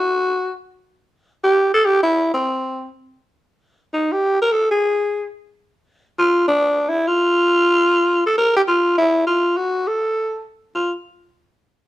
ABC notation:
X:1
M:4/4
L:1/8
Q:"Swing" 1/4=202
K:F
V:1 name="Tenor saxophone"
_G3 z4 z | z G2 A G E2 C- | C3 z4 z | z2 _E G2 B A _A- |
_A3 z4 z | z F2 D3 E F- | F6- F A | B G F2 E2 F2 |
_G2 A4 z2 | F z6 z |]